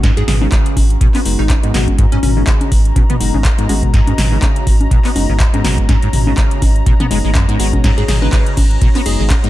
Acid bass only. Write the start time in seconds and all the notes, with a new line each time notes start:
0.03 G#2
0.17 G#2
0.41 C#3
0.52 C#3
0.77 B2
1.01 B2
1.15 B3
1.39 C#3
1.63 G#2
1.74 G#3
1.99 G#2
2.12 G#2
2.37 C#3
2.47 C#3
2.72 B2
2.96 B2
3.10 B3
3.34 C#3
3.58 G#2
3.69 G#3
3.94 G#2
4.07 G#2
4.32 C#3
4.42 C#3
4.67 B2
4.91 B2
5.05 B3
5.29 C#3
5.54 G#2
5.64 G#3
5.89 G#2
6.03 G#2
6.27 C#3
6.38 C#3
6.62 B2
6.86 B2
7.00 B3
7.11 G#3
7.24 G#3
7.35 F#2
7.49 G#2
7.59 G#3
7.84 G#2
7.97 G#2
8.22 C#3
8.33 C#3
8.57 B2
8.81 B2
8.95 B3
9.19 C#3
9.44 G#2